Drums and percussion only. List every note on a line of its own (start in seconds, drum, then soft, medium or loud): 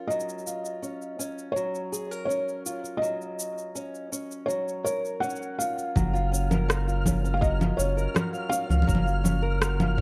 0.11 shaker soft
0.20 shaker soft
0.29 shaker soft
0.38 shaker soft
0.47 shaker medium
0.65 shaker soft
0.83 shaker soft
1.02 shaker soft
1.20 shaker medium
1.39 shaker soft
1.57 shaker soft
1.75 shaker soft
1.93 shaker medium
2.12 shaker soft
2.30 shaker soft
2.49 shaker soft
2.66 shaker medium
2.85 shaker soft
3.03 shaker soft
3.22 shaker soft
3.40 shaker medium
3.58 shaker soft
3.76 shaker soft
3.95 shaker soft
4.13 shaker medium
4.31 shaker soft
4.50 shaker soft
4.68 shaker soft
4.86 shaker medium
5.05 shaker soft
5.23 shaker soft
5.30 shaker soft
5.36 shaker soft
5.42 shaker soft
5.60 shaker medium
5.79 shaker soft
5.96 kick loud
5.96 low conga medium
5.96 shaker soft
6.15 shaker soft
6.34 shaker medium
6.51 low conga medium
6.51 shaker soft
6.70 cross-stick loud
6.70 shaker soft
6.89 shaker soft
7.06 kick loud
7.06 low conga medium
7.06 shaker medium
7.25 shaker soft
7.42 kick loud
7.42 shaker soft
7.61 low conga medium
7.61 shaker soft
7.80 shaker medium
7.98 shaker soft
8.16 cross-stick loud
8.16 low conga medium
8.16 shaker soft
8.34 shaker soft
8.52 shaker medium
8.70 low conga soft
8.70 shaker soft
8.82 low conga medium
8.89 kick loud
8.89 shaker soft
8.95 low conga medium
9.07 shaker soft
9.25 low conga medium
9.25 shaker medium
9.62 cross-stick loud
9.62 shaker soft
9.80 low conga medium
9.80 shaker soft